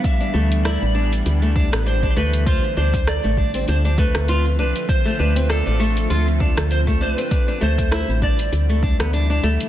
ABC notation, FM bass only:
X:1
M:4/4
L:1/16
Q:"Swing 16ths" 1/4=99
K:Ddor
V:1 name="FM bass" clef=bass
z2 D,,3 A,,,3 D,,3 A,,,3 D,,2- | D,, z D,,3 A,,,3 D,,3 D,,3 C,, z | z2 D,,3 A,,,3 D,,3 D,,3 C,, z | z2 D,,3 A,,,3 D,,3 D,,3 D,, z |]